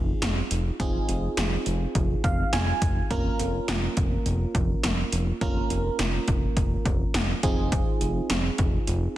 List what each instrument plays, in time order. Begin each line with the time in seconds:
Already playing: analog synth bass F1, fm electric piano C4 D#4 F4 G#4
0.22 analog synth bass F1, snare, closed hi-hat
0.51 analog synth bass F1, closed hi-hat
0.80 analog synth bass F1, fm electric piano C4 D#4 F4 G#4, kick, closed hi-hat
1.09 analog synth bass F1, closed hi-hat
1.37 analog synth bass F1, snare, closed hi-hat
1.66 analog synth bass F1, closed hi-hat
1.95 analog synth bass F1, kick, closed hi-hat
2.24 analog synth bass F1, fm electric piano F5, kick, closed hi-hat
2.53 analog synth bass F1, fm electric piano G#5, snare, closed hi-hat
2.82 analog synth bass F1, kick, closed hi-hat
3.11 analog synth bass F1, fm electric piano A#3 C#4 F4 A#4, kick, closed hi-hat
3.39 analog synth bass F1, closed hi-hat
3.68 analog synth bass F1, snare, closed hi-hat
3.97 analog synth bass F1, kick, closed hi-hat
4.26 analog synth bass F1, closed hi-hat
4.55 analog synth bass F1, kick, closed hi-hat
4.83 analog synth bass F1, snare, closed hi-hat
5.12 analog synth bass F1, closed hi-hat
5.41 analog synth bass F1, fm electric piano A#3 C#4 F4 A#4, kick, closed hi-hat
5.70 analog synth bass F1, closed hi-hat
5.99 analog synth bass F1, snare, closed hi-hat
6.28 analog synth bass F1, kick, closed hi-hat
6.57 analog synth bass F1, kick, closed hi-hat
6.85 analog synth bass F1, kick, closed hi-hat
7.14 analog synth bass F1, snare, closed hi-hat
7.43 analog synth bass F1, fm electric piano C4 D#4 F4 G#4, kick, closed hi-hat
7.72 kick, closed hi-hat
8.01 analog synth bass F1, closed hi-hat
8.30 analog synth bass F1, snare, closed hi-hat
8.58 analog synth bass F1, kick, closed hi-hat
8.87 analog synth bass F1, closed hi-hat